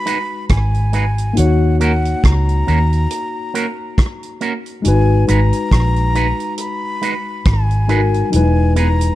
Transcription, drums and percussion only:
0.07 closed hi-hat
0.49 kick, cross-stick, closed hi-hat
0.74 closed hi-hat
0.93 closed hi-hat
1.18 closed hi-hat
1.37 closed hi-hat
1.80 closed hi-hat
2.05 closed hi-hat
2.24 kick, cross-stick, closed hi-hat
2.49 closed hi-hat
2.68 closed hi-hat
2.93 closed hi-hat
3.10 closed hi-hat
3.55 closed hi-hat
3.98 kick, cross-stick, closed hi-hat
4.23 closed hi-hat
4.41 closed hi-hat
4.66 closed hi-hat
4.85 closed hi-hat
5.28 closed hi-hat
5.53 closed hi-hat
5.71 kick, cross-stick, closed hi-hat
5.96 closed hi-hat
6.15 closed hi-hat
6.40 closed hi-hat
6.58 closed hi-hat
7.02 closed hi-hat
7.45 kick, cross-stick, closed hi-hat
7.71 closed hi-hat
7.89 closed hi-hat
8.14 closed hi-hat
8.33 closed hi-hat
8.76 closed hi-hat
9.01 closed hi-hat

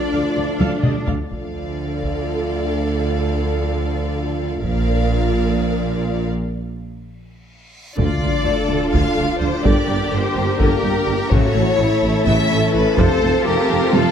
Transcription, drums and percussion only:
0.60 taiko high
0.83 taiko mid
1.07 taiko low
1.31 taiko
2.03 taiko
4.64 taiko
7.98 taiko
8.94 taiko
9.65 taiko
10.60 taiko
11.31 taiko
12.27 taiko
12.98 taiko
13.93 taiko high

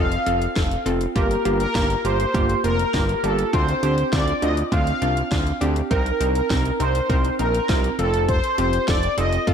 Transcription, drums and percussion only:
0.12 closed hi-hat
0.26 closed hi-hat
0.42 closed hi-hat
0.56 kick, snare, closed hi-hat
0.71 closed hi-hat
0.86 closed hi-hat
1.01 closed hi-hat
1.16 kick, closed hi-hat
1.31 closed hi-hat
1.45 closed hi-hat
1.60 closed hi-hat
1.75 kick, snare, closed hi-hat
1.90 closed hi-hat
2.05 closed hi-hat
2.20 closed hi-hat
2.34 kick, closed hi-hat
2.50 closed hi-hat
2.64 closed hi-hat
2.79 closed hi-hat
2.94 kick, snare, closed hi-hat
3.09 closed hi-hat
3.24 closed hi-hat
3.39 closed hi-hat
3.53 kick, closed hi-hat
3.69 closed hi-hat
3.83 closed hi-hat
3.98 closed hi-hat
4.13 kick, snare, closed hi-hat
4.28 closed hi-hat
4.42 closed hi-hat
4.57 closed hi-hat
4.72 kick, closed hi-hat
4.87 closed hi-hat
5.02 closed hi-hat
5.17 closed hi-hat
5.32 kick, snare, closed hi-hat
5.47 closed hi-hat
5.62 closed hi-hat
5.76 closed hi-hat
5.91 kick, closed hi-hat
6.06 closed hi-hat
6.21 closed hi-hat
6.35 closed hi-hat
6.50 kick, snare, closed hi-hat
6.65 closed hi-hat
6.80 closed hi-hat
6.95 closed hi-hat
7.10 kick, closed hi-hat
7.25 closed hi-hat
7.39 closed hi-hat
7.54 closed hi-hat
7.69 kick, snare, closed hi-hat
7.84 closed hi-hat
7.99 closed hi-hat
8.14 closed hi-hat
8.29 kick, closed hi-hat
8.44 closed hi-hat
8.58 closed hi-hat
8.73 closed hi-hat
8.88 kick, snare, closed hi-hat
9.03 closed hi-hat
9.18 closed hi-hat
9.33 closed hi-hat
9.47 kick, closed hi-hat

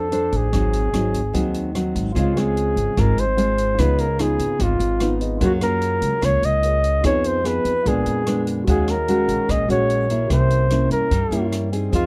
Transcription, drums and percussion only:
0.12 closed hi-hat
0.32 kick, closed hi-hat
0.53 kick, cross-stick, closed hi-hat
0.73 closed hi-hat
0.94 cross-stick, closed hi-hat
1.14 kick, closed hi-hat
1.34 kick, closed hi-hat
1.54 closed hi-hat
1.75 cross-stick, closed hi-hat
1.95 kick, closed hi-hat
2.16 kick, closed hi-hat
2.37 cross-stick, closed hi-hat
2.57 closed hi-hat
2.77 closed hi-hat
2.97 kick, cross-stick, closed hi-hat
3.18 closed hi-hat
3.38 closed hi-hat
3.58 closed hi-hat
3.78 kick, cross-stick, closed hi-hat
3.98 closed hi-hat
4.19 cross-stick, closed hi-hat
4.39 closed hi-hat
4.60 kick, closed hi-hat
4.80 closed hi-hat
5.00 cross-stick, closed hi-hat
5.21 closed hi-hat
5.41 kick, closed hi-hat
5.61 cross-stick, closed hi-hat
5.82 closed hi-hat
6.02 closed hi-hat
6.22 kick, cross-stick, closed hi-hat
6.43 closed hi-hat
6.63 closed hi-hat
6.84 closed hi-hat
7.04 kick, cross-stick, closed hi-hat
7.24 closed hi-hat
7.45 cross-stick, closed hi-hat
7.65 closed hi-hat
7.86 kick, closed hi-hat
8.06 closed hi-hat
8.27 cross-stick, closed hi-hat
8.47 closed hi-hat
8.67 kick, closed hi-hat
8.88 cross-stick, closed hi-hat
9.08 closed hi-hat
9.29 closed hi-hat
9.49 kick, cross-stick, closed hi-hat
9.70 closed hi-hat
9.90 closed hi-hat
10.10 closed hi-hat
10.30 kick, cross-stick, closed hi-hat
10.50 closed hi-hat
10.70 cross-stick, closed hi-hat
10.91 closed hi-hat
11.11 kick, closed hi-hat
11.32 closed hi-hat
11.52 cross-stick, closed hi-hat
11.73 closed hi-hat
11.93 kick, closed hi-hat

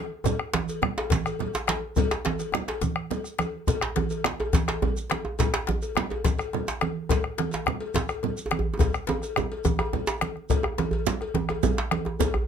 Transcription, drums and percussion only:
0.24 bombo rim, bombo low, cowbell, djembe tone, djembe bass, low conga, shekere
0.39 bombo rim
0.53 bombo rim, djembe slap, high conga
0.69 cowbell, shekere
0.82 bombo rim, djembe tone, low conga
0.98 cowbell, djembe slap
1.10 bombo low, djembe slap, high conga, djembe bass, shekere
1.12 djembe slap
1.26 bombo rim, cowbell, shekere
1.39 bombo rim, cowbell, djembe tone, low conga
1.53 djembe slap, high conga, shekere
1.67 bombo rim, djembe slap, high conga
1.69 cowbell, djembe slap
1.96 bombo low, cowbell, djembe tone, djembe bass, low conga, shekere
2.11 bombo rim, djembe slap, shekere
2.25 cowbell, djembe slap, high conga, shekere
2.39 bombo rim, cowbell, high conga, shekere
2.52 bombo rim, djembe slap, djembe tone, high conga, low conga, shekere
2.68 bombo rim, cowbell, djembe slap
2.81 bombo rim, bombo low, djembe slap, high conga, djembe bass, shekere
2.96 bombo rim
3.11 cowbell, djembe slap, djembe tone, high conga, low conga, shekere
3.24 bombo rim, shekere
3.39 bombo rim, cowbell, djembe slap, high conga, shekere
3.67 bombo rim, bombo low, cowbell, djembe tone, djembe bass, low conga, shekere
3.81 bombo rim, djembe slap
3.96 bombo rim, cowbell, djembe slap, high conga, djembe bass
4.10 cowbell, shekere
4.24 bombo rim, djembe slap, djembe tone, low conga
4.40 cowbell, djembe tone
4.53 bombo low, djembe slap, high conga, djembe bass, shekere
4.68 bombo rim, cowbell, djembe slap, shekere
4.82 bombo rim, cowbell, djembe tone, djembe bass, low conga
4.96 djembe slap, high conga, shekere
5.10 bombo rim, cowbell, djembe slap
5.11 djembe slap, high conga
5.25 djembe tone
5.39 bombo rim, bombo low, cowbell, djembe slap, djembe tone, djembe bass, low conga, shekere
5.54 bombo rim, djembe slap
5.67 bombo rim, djembe slap, high conga, djembe bass
5.82 cowbell, shekere
5.95 bombo rim, djembe slap, djembe tone, low conga
6.10 cowbell, djembe tone
6.24 bombo low, djembe slap, high conga, djembe bass, shekere
6.39 bombo rim, cowbell, shekere
6.53 bombo rim, cowbell, djembe tone, low conga
6.68 djembe slap, high conga, shekere
6.81 bombo rim, cowbell, djembe slap, high conga
7.09 bombo rim, bombo low, cowbell, djembe slap, djembe tone, djembe bass, low conga, shekere
7.24 bombo rim
7.38 bombo rim, cowbell, djembe slap, high conga
7.51 cowbell, djembe slap, shekere
7.66 bombo rim, djembe tone, low conga
7.80 cowbell
7.94 bombo low, djembe slap, high conga, djembe bass, shekere
8.09 bombo rim, cowbell, shekere
8.23 bombo rim, cowbell, djembe tone, low conga
8.37 djembe slap, high conga, shekere
8.46 djembe tone
8.51 bombo rim, cowbell, djembe slap, high conga
8.59 djembe bass
8.74 djembe tone
8.79 bombo low, cowbell, djembe slap, djembe tone, djembe bass, low conga, shekere
8.94 bombo rim, djembe slap, shekere
9.07 bombo rim, cowbell, djembe slap, high conga, djembe tone
9.22 bombo rim, cowbell, shekere
9.36 bombo rim, djembe tone, low conga, shekere
9.38 djembe tone
9.51 cowbell, high conga
9.65 bombo rim, bombo low, djembe slap, djembe tone, high conga, djembe bass, shekere
9.79 bombo rim, cowbell, djembe tone, high conga
9.93 bombo rim, cowbell, djembe slap, djembe tone, high conga, low conga
10.07 djembe slap, high conga, shekere
10.21 bombo rim, cowbell, djembe slap, high conga
10.36 bombo rim, high conga
10.50 bombo rim, bombo low, cowbell, djembe bass, low conga, shekere
10.63 bombo rim, djembe tone
10.78 bombo rim, cowbell, djembe slap, djembe tone, high conga, shekere
10.91 cowbell, djembe slap, djembe bass
11.06 djembe slap, high conga, low conga, shekere
11.21 bombo rim, cowbell, djembe tone
11.34 bombo rim, bombo low, djembe slap, high conga, djembe tone, djembe bass
11.49 bombo rim, cowbell, djembe tone
11.63 bombo rim, cowbell, low conga, djembe bass, shekere
11.77 bombo rim, djembe slap
11.91 bombo rim, cowbell, djembe slap, high conga
12.05 djembe slap, djembe tone
12.20 bombo rim, bombo low, cowbell, djembe tone, djembe bass, low conga, shekere
12.34 bombo rim, djembe bass

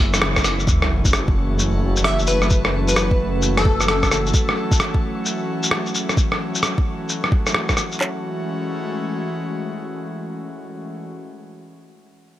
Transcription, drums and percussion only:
0.14 cross-stick, open hi-hat, shaker
0.22 cross-stick
0.36 kick, cross-stick, shaker
0.44 cross-stick, open hi-hat, shaker
0.59 shaker
0.67 kick, shaker
0.82 cross-stick
1.05 kick, shaker
1.13 cross-stick, shaker
1.28 kick
1.59 shaker
1.96 shaker
2.04 cross-stick
2.19 shaker
2.27 shaker
2.42 cross-stick, shaker
2.50 kick, shaker
2.65 cross-stick
2.88 shaker
2.96 cross-stick, shaker
3.11 kick
3.42 shaker
3.57 cross-stick
3.65 kick
3.81 cross-stick, shaker
3.88 cross-stick
4.03 kick, cross-stick, shaker
4.12 cross-stick, shaker
4.27 shaker
4.34 kick, shaker
4.49 cross-stick
4.72 kick, shaker
4.80 cross-stick, shaker
4.95 kick
5.26 shaker
5.63 shaker
5.71 cross-stick
5.86 shaker
5.95 shaker
6.09 cross-stick, shaker
6.17 kick, shaker
6.32 cross-stick
6.55 shaker
6.63 cross-stick, shaker
6.78 kick
7.09 shaker
7.24 cross-stick
7.32 kick
7.47 cross-stick, shaker
7.54 cross-stick
7.69 kick, cross-stick, shaker
7.77 cross-stick, shaker
7.92 shaker
8.01 snare, clap

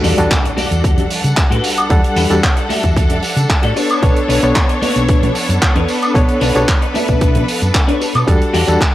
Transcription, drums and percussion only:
0.04 open hi-hat, tambourine
0.18 closed hi-hat, tambourine
0.31 kick, clap, closed hi-hat, tambourine
0.45 closed hi-hat
0.58 open hi-hat, tambourine, high conga
0.72 closed hi-hat, tambourine
0.84 kick, closed hi-hat, tambourine
0.98 closed hi-hat, low conga
1.10 open hi-hat, tambourine
1.24 closed hi-hat, tambourine
1.37 kick, clap, closed hi-hat, tambourine
1.52 closed hi-hat
1.64 open hi-hat, tambourine
1.77 closed hi-hat, tambourine, high woodblock
1.90 kick, closed hi-hat, tambourine
2.04 closed hi-hat
2.16 open hi-hat, tambourine
2.30 closed hi-hat, tambourine, high bongo
2.43 kick, clap, closed hi-hat
2.57 closed hi-hat
2.70 open hi-hat, tambourine, high conga
2.83 kick, closed hi-hat, tambourine
2.96 kick, closed hi-hat, tambourine
3.10 closed hi-hat, low conga
3.23 open hi-hat, tambourine
3.37 closed hi-hat, tambourine
3.50 kick, clap, closed hi-hat
3.63 closed hi-hat
3.76 open hi-hat, tambourine, high bongo
3.90 closed hi-hat, tambourine, high woodblock
4.03 kick, closed hi-hat, tambourine
4.16 closed hi-hat
4.30 open hi-hat, tambourine
4.42 closed hi-hat, tambourine
4.55 kick, clap, closed hi-hat, tambourine
4.69 closed hi-hat
4.82 open hi-hat, tambourine, high conga
4.96 closed hi-hat, tambourine
5.09 kick, closed hi-hat, tambourine
5.23 closed hi-hat, low conga
5.35 open hi-hat, tambourine
5.50 closed hi-hat, tambourine
5.62 kick, clap, closed hi-hat
5.76 closed hi-hat
5.88 open hi-hat, tambourine
6.02 closed hi-hat, tambourine, high woodblock
6.15 kick, closed hi-hat, tambourine
6.29 closed hi-hat
6.41 open hi-hat, tambourine
6.55 closed hi-hat, tambourine, high bongo
6.68 kick, clap, closed hi-hat
6.82 closed hi-hat
6.95 open hi-hat, tambourine, high conga
7.08 kick, closed hi-hat, tambourine
7.21 kick, closed hi-hat, tambourine
7.35 closed hi-hat, low conga
7.48 open hi-hat, tambourine
7.62 closed hi-hat, tambourine
7.74 kick, clap, closed hi-hat
7.89 closed hi-hat
8.01 open hi-hat, tambourine, high bongo
8.15 closed hi-hat, tambourine, high woodblock
8.28 kick, closed hi-hat, tambourine
8.42 closed hi-hat
8.54 open hi-hat, tambourine
8.68 closed hi-hat, tambourine
8.81 kick, clap, closed hi-hat

